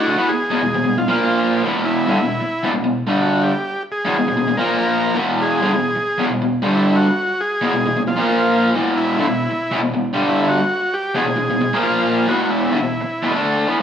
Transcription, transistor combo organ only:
Already playing: F#4
0.29 G#4
0.98 F4
1.24 F4
1.85 E4
3.22 F#4
3.43 G4
3.92 G#4
4.57 A#4
4.78 A#4
5.42 G#4
6.75 E4
6.96 F#4
7.41 G#4
8.08 F4
8.29 F4
8.97 E4
10.29 E4
10.49 F#4
10.94 G4
11.16 G#4
11.83 F4
12.28 F#4
12.43 F#4
12.50 E4

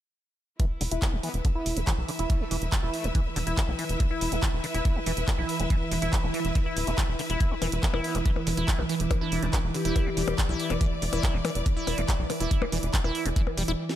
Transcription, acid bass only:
0.60 E3
0.81 D3
0.92 E4
1.13 E3
1.23 E3
1.45 D3
1.55 E4
1.77 E3
1.87 E3
2.09 D3
2.19 E4
2.40 E3
2.51 E3
2.72 D3
2.83 E4
3.04 E3
3.15 E3
3.36 D3
3.47 E4
3.68 E3
3.79 E3
4.00 D3
4.11 E4
4.32 E3
4.43 E3
4.64 D3
4.74 E4
4.96 E3
5.06 E3
5.28 D3
5.38 E4
5.60 E3
5.70 E3
5.92 D3
6.02 E4
6.23 E3
6.34 E3
6.55 D3
6.66 E4
6.87 E3
6.98 E3
7.19 D3
7.30 E4
7.51 E3
7.62 E3
7.83 D3
7.94 E4
8.15 E3
8.25 E3
8.47 D3
8.57 E4
8.79 E3
8.89 E3
9.11 D3
9.21 E4
9.43 E3
9.53 E3
9.74 D3
9.85 E4
10.06 E3
10.17 E3
10.38 D3
10.49 E4
10.70 E3
10.81 E3
11.02 D3
11.13 E4
11.34 E3
11.45 E3
11.66 D3
11.77 E4
11.98 E3
12.09 E3
12.30 D3
12.40 E4
12.62 E3
12.72 E3
12.94 D3
13.04 E4
13.26 E3
13.36 E3
13.57 G3
13.68 E4

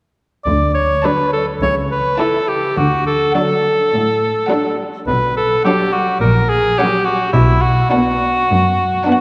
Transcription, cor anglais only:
0.44 D5
0.74 C#5
1.05 B4
1.33 A4
1.63 C#5
1.91 B4
2.20 A4
2.48 G4
2.77 F#4
3.07 A4
3.35 A4
5.07 B4
5.37 A4
5.65 G4
5.92 F#4
6.21 A#4
6.49 G#4
6.78 G4
7.05 F#4
7.33 E4
7.62 F#4
7.90 F#4

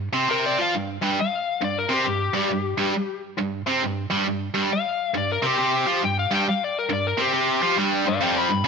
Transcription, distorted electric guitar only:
0.13 C3 C4
0.29 C3 C4
0.58 F3 F4
0.74 G2
1.02 G2 G3
1.61 G2
1.89 C3 C4
2.05 G2
2.33 G2 G3
2.49 G2
2.78 G2 G3
3.38 G2
3.67 C3 C4
3.82 G2
4.10 G2 G3
4.25 G2
4.54 G2 G3
5.14 G2
5.42 C3 C4
5.58 C3 C4
5.87 F3 F4
6.02 G2
6.31 G2 G3
6.90 G2
7.18 C3 C4
7.33 C3 C4
7.62 F3 F4
7.76 G2 G3
8.06 G2
8.21 F2 F3
8.50 G2
8.64 C#3

